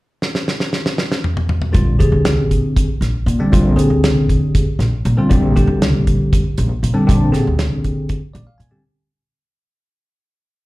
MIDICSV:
0, 0, Header, 1, 4, 480
1, 0, Start_track
1, 0, Tempo, 507614
1, 1649, Time_signature, 7, 3, 24, 8
1, 10074, End_track
2, 0, Start_track
2, 0, Title_t, "Tine electric piano"
2, 0, Program_c, 0, 4
2, 1628, Note_on_c, 0, 50, 68
2, 1634, Note_on_c, 0, 55, 70
2, 1634, Note_on_c, 0, 60, 64
2, 1639, Note_on_c, 0, 65, 76
2, 1845, Note_off_c, 0, 50, 0
2, 1848, Note_off_c, 0, 55, 0
2, 1848, Note_off_c, 0, 60, 0
2, 1850, Note_off_c, 0, 65, 0
2, 1878, Note_on_c, 0, 50, 69
2, 1882, Note_on_c, 0, 67, 65
2, 1885, Note_on_c, 0, 60, 63
2, 1889, Note_on_c, 0, 68, 77
2, 2709, Note_off_c, 0, 50, 0
2, 2711, Note_off_c, 0, 67, 0
2, 2712, Note_off_c, 0, 60, 0
2, 2714, Note_off_c, 0, 68, 0
2, 3208, Note_on_c, 0, 50, 77
2, 3212, Note_on_c, 0, 55, 70
2, 3216, Note_on_c, 0, 62, 91
2, 3219, Note_on_c, 0, 60, 73
2, 3314, Note_off_c, 0, 50, 0
2, 3317, Note_off_c, 0, 55, 0
2, 3318, Note_off_c, 0, 62, 0
2, 3320, Note_off_c, 0, 60, 0
2, 3327, Note_on_c, 0, 50, 71
2, 3329, Note_on_c, 0, 55, 70
2, 3330, Note_on_c, 0, 60, 69
2, 3334, Note_on_c, 0, 65, 80
2, 3537, Note_off_c, 0, 50, 0
2, 3538, Note_off_c, 0, 55, 0
2, 3539, Note_off_c, 0, 60, 0
2, 3541, Note_off_c, 0, 65, 0
2, 3555, Note_on_c, 0, 50, 66
2, 3557, Note_on_c, 0, 67, 62
2, 3557, Note_on_c, 0, 68, 79
2, 3562, Note_on_c, 0, 60, 69
2, 4390, Note_off_c, 0, 50, 0
2, 4391, Note_off_c, 0, 67, 0
2, 4391, Note_off_c, 0, 68, 0
2, 4394, Note_off_c, 0, 60, 0
2, 4893, Note_on_c, 0, 50, 84
2, 4895, Note_on_c, 0, 55, 74
2, 4895, Note_on_c, 0, 60, 77
2, 4904, Note_on_c, 0, 65, 85
2, 4994, Note_off_c, 0, 50, 0
2, 4995, Note_off_c, 0, 55, 0
2, 5000, Note_off_c, 0, 60, 0
2, 5005, Note_off_c, 0, 65, 0
2, 5006, Note_on_c, 0, 50, 75
2, 5006, Note_on_c, 0, 55, 71
2, 5008, Note_on_c, 0, 67, 82
2, 5012, Note_on_c, 0, 60, 67
2, 5219, Note_off_c, 0, 50, 0
2, 5219, Note_off_c, 0, 55, 0
2, 5220, Note_off_c, 0, 67, 0
2, 5222, Note_off_c, 0, 60, 0
2, 5251, Note_on_c, 0, 55, 74
2, 5254, Note_on_c, 0, 50, 76
2, 5258, Note_on_c, 0, 67, 86
2, 5259, Note_on_c, 0, 60, 64
2, 6079, Note_off_c, 0, 55, 0
2, 6080, Note_off_c, 0, 50, 0
2, 6082, Note_off_c, 0, 67, 0
2, 6083, Note_off_c, 0, 60, 0
2, 6560, Note_on_c, 0, 50, 82
2, 6562, Note_on_c, 0, 55, 76
2, 6564, Note_on_c, 0, 60, 75
2, 6567, Note_on_c, 0, 62, 97
2, 6673, Note_off_c, 0, 50, 0
2, 6674, Note_off_c, 0, 55, 0
2, 6675, Note_off_c, 0, 60, 0
2, 6675, Note_off_c, 0, 62, 0
2, 6685, Note_on_c, 0, 55, 67
2, 6686, Note_on_c, 0, 50, 75
2, 6686, Note_on_c, 0, 60, 73
2, 6686, Note_on_c, 0, 62, 82
2, 6898, Note_off_c, 0, 55, 0
2, 6899, Note_off_c, 0, 50, 0
2, 6899, Note_off_c, 0, 60, 0
2, 6899, Note_off_c, 0, 62, 0
2, 6921, Note_on_c, 0, 50, 75
2, 6924, Note_on_c, 0, 67, 67
2, 6925, Note_on_c, 0, 68, 74
2, 6926, Note_on_c, 0, 60, 64
2, 7751, Note_off_c, 0, 50, 0
2, 7753, Note_off_c, 0, 67, 0
2, 7754, Note_off_c, 0, 60, 0
2, 7754, Note_off_c, 0, 68, 0
2, 7882, Note_on_c, 0, 74, 65
2, 8001, Note_off_c, 0, 74, 0
2, 8007, Note_on_c, 0, 77, 61
2, 8112, Note_on_c, 0, 80, 58
2, 8123, Note_off_c, 0, 77, 0
2, 8229, Note_on_c, 0, 50, 79
2, 8234, Note_on_c, 0, 55, 70
2, 8237, Note_on_c, 0, 60, 71
2, 8238, Note_on_c, 0, 67, 81
2, 8346, Note_off_c, 0, 50, 0
2, 8346, Note_off_c, 0, 80, 0
2, 8348, Note_off_c, 0, 55, 0
2, 8350, Note_off_c, 0, 60, 0
2, 8350, Note_off_c, 0, 67, 0
2, 10074, End_track
3, 0, Start_track
3, 0, Title_t, "Upright bass"
3, 0, Program_c, 1, 32
3, 1652, Note_on_c, 1, 34, 87
3, 1860, Note_off_c, 1, 34, 0
3, 1892, Note_on_c, 1, 46, 82
3, 1996, Note_off_c, 1, 46, 0
3, 2004, Note_on_c, 1, 38, 82
3, 2249, Note_off_c, 1, 38, 0
3, 2249, Note_on_c, 1, 34, 69
3, 2459, Note_off_c, 1, 34, 0
3, 2844, Note_on_c, 1, 34, 84
3, 2953, Note_off_c, 1, 34, 0
3, 3086, Note_on_c, 1, 46, 92
3, 3194, Note_off_c, 1, 46, 0
3, 3336, Note_on_c, 1, 34, 100
3, 3544, Note_off_c, 1, 34, 0
3, 3564, Note_on_c, 1, 46, 83
3, 3673, Note_off_c, 1, 46, 0
3, 3688, Note_on_c, 1, 38, 83
3, 3928, Note_off_c, 1, 38, 0
3, 3928, Note_on_c, 1, 34, 78
3, 4141, Note_off_c, 1, 34, 0
3, 4529, Note_on_c, 1, 34, 84
3, 4637, Note_off_c, 1, 34, 0
3, 4777, Note_on_c, 1, 46, 91
3, 4882, Note_off_c, 1, 46, 0
3, 5021, Note_on_c, 1, 34, 97
3, 5229, Note_off_c, 1, 34, 0
3, 5266, Note_on_c, 1, 46, 89
3, 5359, Note_off_c, 1, 46, 0
3, 5365, Note_on_c, 1, 38, 90
3, 5612, Note_off_c, 1, 38, 0
3, 5612, Note_on_c, 1, 34, 81
3, 5824, Note_off_c, 1, 34, 0
3, 6221, Note_on_c, 1, 34, 89
3, 6325, Note_off_c, 1, 34, 0
3, 6456, Note_on_c, 1, 46, 80
3, 6562, Note_off_c, 1, 46, 0
3, 6705, Note_on_c, 1, 34, 95
3, 6911, Note_off_c, 1, 34, 0
3, 6936, Note_on_c, 1, 46, 91
3, 7042, Note_off_c, 1, 46, 0
3, 7065, Note_on_c, 1, 38, 85
3, 7296, Note_off_c, 1, 38, 0
3, 7296, Note_on_c, 1, 34, 80
3, 7506, Note_off_c, 1, 34, 0
3, 7893, Note_on_c, 1, 34, 87
3, 7999, Note_off_c, 1, 34, 0
3, 8127, Note_on_c, 1, 46, 85
3, 8236, Note_off_c, 1, 46, 0
3, 10074, End_track
4, 0, Start_track
4, 0, Title_t, "Drums"
4, 210, Note_on_c, 9, 38, 63
4, 304, Note_off_c, 9, 38, 0
4, 330, Note_on_c, 9, 38, 70
4, 425, Note_off_c, 9, 38, 0
4, 453, Note_on_c, 9, 38, 68
4, 548, Note_off_c, 9, 38, 0
4, 570, Note_on_c, 9, 38, 64
4, 664, Note_off_c, 9, 38, 0
4, 689, Note_on_c, 9, 38, 68
4, 783, Note_off_c, 9, 38, 0
4, 812, Note_on_c, 9, 38, 80
4, 907, Note_off_c, 9, 38, 0
4, 929, Note_on_c, 9, 38, 82
4, 1024, Note_off_c, 9, 38, 0
4, 1055, Note_on_c, 9, 38, 83
4, 1150, Note_off_c, 9, 38, 0
4, 1175, Note_on_c, 9, 45, 87
4, 1269, Note_off_c, 9, 45, 0
4, 1295, Note_on_c, 9, 45, 89
4, 1389, Note_off_c, 9, 45, 0
4, 1411, Note_on_c, 9, 45, 98
4, 1505, Note_off_c, 9, 45, 0
4, 1528, Note_on_c, 9, 45, 86
4, 1622, Note_off_c, 9, 45, 0
4, 1649, Note_on_c, 9, 42, 73
4, 1651, Note_on_c, 9, 36, 99
4, 1743, Note_off_c, 9, 42, 0
4, 1746, Note_off_c, 9, 36, 0
4, 1893, Note_on_c, 9, 36, 66
4, 1896, Note_on_c, 9, 42, 61
4, 1988, Note_off_c, 9, 36, 0
4, 1990, Note_off_c, 9, 42, 0
4, 2128, Note_on_c, 9, 42, 81
4, 2129, Note_on_c, 9, 38, 105
4, 2222, Note_off_c, 9, 42, 0
4, 2224, Note_off_c, 9, 38, 0
4, 2374, Note_on_c, 9, 36, 68
4, 2375, Note_on_c, 9, 42, 55
4, 2469, Note_off_c, 9, 36, 0
4, 2470, Note_off_c, 9, 42, 0
4, 2614, Note_on_c, 9, 36, 101
4, 2616, Note_on_c, 9, 42, 78
4, 2709, Note_off_c, 9, 36, 0
4, 2710, Note_off_c, 9, 42, 0
4, 2856, Note_on_c, 9, 42, 60
4, 2858, Note_on_c, 9, 38, 31
4, 2951, Note_off_c, 9, 42, 0
4, 2953, Note_off_c, 9, 38, 0
4, 3102, Note_on_c, 9, 42, 58
4, 3196, Note_off_c, 9, 42, 0
4, 3338, Note_on_c, 9, 36, 99
4, 3340, Note_on_c, 9, 42, 76
4, 3432, Note_off_c, 9, 36, 0
4, 3434, Note_off_c, 9, 42, 0
4, 3581, Note_on_c, 9, 42, 59
4, 3676, Note_off_c, 9, 42, 0
4, 3818, Note_on_c, 9, 42, 76
4, 3820, Note_on_c, 9, 38, 101
4, 3912, Note_off_c, 9, 42, 0
4, 3914, Note_off_c, 9, 38, 0
4, 4061, Note_on_c, 9, 36, 72
4, 4064, Note_on_c, 9, 42, 49
4, 4155, Note_off_c, 9, 36, 0
4, 4158, Note_off_c, 9, 42, 0
4, 4300, Note_on_c, 9, 42, 78
4, 4301, Note_on_c, 9, 36, 96
4, 4395, Note_off_c, 9, 36, 0
4, 4395, Note_off_c, 9, 42, 0
4, 4542, Note_on_c, 9, 42, 59
4, 4543, Note_on_c, 9, 38, 33
4, 4636, Note_off_c, 9, 42, 0
4, 4638, Note_off_c, 9, 38, 0
4, 4777, Note_on_c, 9, 42, 58
4, 4871, Note_off_c, 9, 42, 0
4, 5018, Note_on_c, 9, 42, 70
4, 5020, Note_on_c, 9, 36, 96
4, 5113, Note_off_c, 9, 42, 0
4, 5115, Note_off_c, 9, 36, 0
4, 5263, Note_on_c, 9, 36, 67
4, 5267, Note_on_c, 9, 42, 58
4, 5357, Note_off_c, 9, 36, 0
4, 5361, Note_off_c, 9, 42, 0
4, 5502, Note_on_c, 9, 42, 76
4, 5504, Note_on_c, 9, 38, 113
4, 5597, Note_off_c, 9, 42, 0
4, 5598, Note_off_c, 9, 38, 0
4, 5742, Note_on_c, 9, 42, 56
4, 5743, Note_on_c, 9, 36, 66
4, 5836, Note_off_c, 9, 42, 0
4, 5837, Note_off_c, 9, 36, 0
4, 5983, Note_on_c, 9, 36, 102
4, 5983, Note_on_c, 9, 42, 86
4, 6078, Note_off_c, 9, 36, 0
4, 6078, Note_off_c, 9, 42, 0
4, 6218, Note_on_c, 9, 42, 58
4, 6313, Note_off_c, 9, 42, 0
4, 6464, Note_on_c, 9, 42, 63
4, 6559, Note_off_c, 9, 42, 0
4, 6703, Note_on_c, 9, 36, 97
4, 6706, Note_on_c, 9, 42, 83
4, 6798, Note_off_c, 9, 36, 0
4, 6801, Note_off_c, 9, 42, 0
4, 6943, Note_on_c, 9, 42, 62
4, 6945, Note_on_c, 9, 38, 32
4, 7038, Note_off_c, 9, 42, 0
4, 7040, Note_off_c, 9, 38, 0
4, 7175, Note_on_c, 9, 42, 82
4, 7177, Note_on_c, 9, 38, 102
4, 7270, Note_off_c, 9, 42, 0
4, 7272, Note_off_c, 9, 38, 0
4, 7417, Note_on_c, 9, 42, 53
4, 7419, Note_on_c, 9, 36, 71
4, 7512, Note_off_c, 9, 42, 0
4, 7513, Note_off_c, 9, 36, 0
4, 7651, Note_on_c, 9, 42, 88
4, 7656, Note_on_c, 9, 36, 104
4, 7746, Note_off_c, 9, 42, 0
4, 7751, Note_off_c, 9, 36, 0
4, 7894, Note_on_c, 9, 42, 62
4, 7989, Note_off_c, 9, 42, 0
4, 8134, Note_on_c, 9, 42, 62
4, 8228, Note_off_c, 9, 42, 0
4, 10074, End_track
0, 0, End_of_file